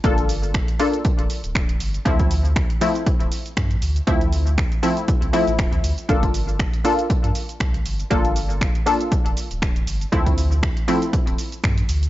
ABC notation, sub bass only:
X:1
M:4/4
L:1/16
Q:"Swing 16ths" 1/4=119
K:Gm
V:1 name="Sub bass" clef=bass
G,,,4 z4 z F,,, z D,,,2 z G,,, z | D,,4 z4 z D,,, z2 G,, z D,, z | D,,4 z4 z C,, z A,,, D,,, D,, D,, z | G,,,4 z4 z G,, z2 C,, z G,,, z |
G,,,4 z4 z F,,, z D,,,2 z G,,, z | D,,4 z4 z D,,, z2 G,, z D,, z |]